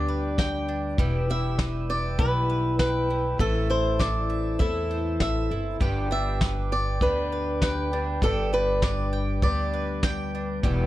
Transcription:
Already playing: D2 G2 D3 G3 B3 D4 G4 B4 D5 G5 D6
0.08 B4
0.38 G5, kick, snare
0.69 D4
0.98 E1 E3 G3 B3 E4 G4 G5 E6, kick
1.28 B3 E4 G4 E5
1.58 B4, kick, snare
1.90 D5 G5
2.19 B1 E3 B3 E4 G4 B4, kick
2.50 B4
2.79 B4 G5, kick, snare
3.09 B3 E4 G4
3.38 A1 A2 E3 A3 C4 E4 A4 C5 E5 A5, kick
3.70 E4 C5
3.99 C5 D5, kick, snare
4.30 E5
4.59 E2 A2 E3 C4 E4 A4 E5, kick
4.91 C5
5.20 A1 E5, kick, snare
5.50 G1 C4 E4 A4
5.80 G1 G2 D3 G3 B3 D4 G4 B4 G5 D6, kick
6.10 G3 B3 D4 G4 E5
6.41 B4, kick, snare
6.72 D5 G5
7.01 D2 G2 D3 G3 B3 D4 G4 B4, kick
7.32 B4
7.62 B4 G5, kick, snare
7.92 G3 B3 D4 G4
8.21 G1 G2 D3 G3 B3 D4 G4 A4 G5, kick
8.53 D4 B4
8.82 B4 D5, kick, snare
9.13 G5
9.42 D2 G2 D3 G3 B3 D4 G4 D5, kick
9.73 B4
10.03 G5, kick, snare
10.35 D4
10.63 E1 E2 B2 E3 G3 B3 G4 G5 E6, kick

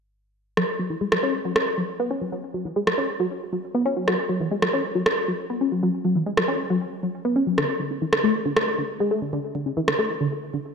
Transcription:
0.57 F#3, cross-stick
0.79 F#3
0.90 E3
1.01 G#3
1.12 F#3, cross-stick
1.23 C#4
1.45 F#3
1.56 cross-stick
1.78 F#3
2.00 B3
2.11 C#4
2.22 F#3
2.32 F#3
2.54 F#3
2.65 E3
2.76 G#3
2.87 F#3, cross-stick
2.98 C#4
3.20 F#3
3.53 F#3
3.75 B3
3.86 C#4
3.97 F#3
4.07 F#3, cross-stick
4.29 F#3
4.40 E3
4.51 G#3
4.62 F#3, cross-stick
4.73 C#4
4.95 F#3
5.06 cross-stick
5.28 F#3
5.50 B3
5.61 C#4
5.72 F#3
5.83 F#3
6.05 F#3
6.15 E3
6.26 G#3
6.37 F#3, cross-stick
6.48 C#4
6.70 F#3
7.03 F#3
7.25 B3
7.36 C#4
7.47 F#3
7.58 D3, cross-stick
7.80 D3
7.91 C#3
8.02 E3
8.13 D3, cross-stick
8.24 A3
8.46 D3
8.57 cross-stick
8.78 D3
9.00 G#3
9.11 A3
9.22 D3
9.33 D3
9.55 D3
9.66 C#3
9.77 E3
9.88 D3, cross-stick
9.99 A3
10.21 D3
10.54 D3

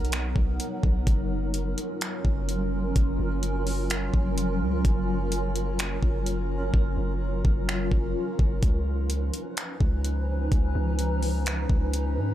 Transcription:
Already playing: B1 F#3 B3 D#4 A#4
0.05 closed hi-hat
0.12 finger snap, closed hi-hat
0.36 B1, kick
0.60 closed hi-hat
0.83 B1, kick
1.07 F#1 C#4 F4 A#4, kick, closed hi-hat
1.54 closed hi-hat
1.78 closed hi-hat
2.01 finger snap, closed hi-hat
2.25 F#1, kick
2.49 closed hi-hat
2.96 F#1, kick, closed hi-hat
3.19 F#1
3.43 closed hi-hat
3.67 open hi-hat
3.90 finger snap, closed hi-hat
4.14 F#1, kick
4.38 closed hi-hat
4.61 C#2
4.85 F#1, kick, closed hi-hat
5.32 closed hi-hat
5.56 closed hi-hat
5.79 finger snap, closed hi-hat
6.03 F#1, kick
6.26 closed hi-hat
6.74 F#1, kick
6.97 F#1
7.45 F#1, kick
7.69 finger snap
7.91 F#1, kick
8.39 F#1, kick
8.63 C#2 F3 C#4 D#4 B4, kick, closed hi-hat
9.10 closed hi-hat
9.34 closed hi-hat
9.57 finger snap, closed hi-hat
9.80 C#2, kick
10.05 closed hi-hat
10.52 C#2, kick, closed hi-hat
10.75 C#2
10.99 closed hi-hat
11.23 open hi-hat
11.46 finger snap, closed hi-hat
11.70 C#2, kick
11.94 closed hi-hat
12.17 G#2

